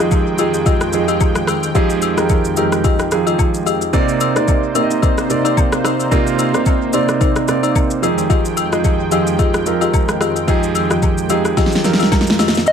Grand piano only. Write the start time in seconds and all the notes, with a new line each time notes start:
Already playing: C6
0.00 F3 D#4 G4 G#4
0.39 F3 D#4 G4 G#4
0.93 F3 D#4 G4 G#4
1.75 F3 D#4 G4 G#4
2.17 F3 D#4 G4 A#4
2.57 F3 D#4 G4 A#4
3.11 F3 D#4 G4 G#4
3.93 C3 A#3 D#4 D5
4.35 C3 A#3 D#4 D5
4.75 C3 A#3 D#4 D5
4.83 D#5
5.29 C3 A#3 D#4 D5
6.11 C3 A#3 D#4 F4
6.54 C3 A#3 D#4 F5
6.93 C3 A#3 D#4 D5
7.48 C3 A#3 D#4 D5
8.02 F3 D#4 G4 G#4
8.72 F3 D#4 G4 G#4
9.11 F3 D#4 G4 G#4
9.66 F3 D#4 G4 A#4
10.47 F3 D#4 G4 G#4
10.90 F3 D#4 G4 G#4
11.29 F3 D#4 G4 G#4
11.84 F3 D#4 G4 A#4
12.65 C3 A#3 D#4 D#5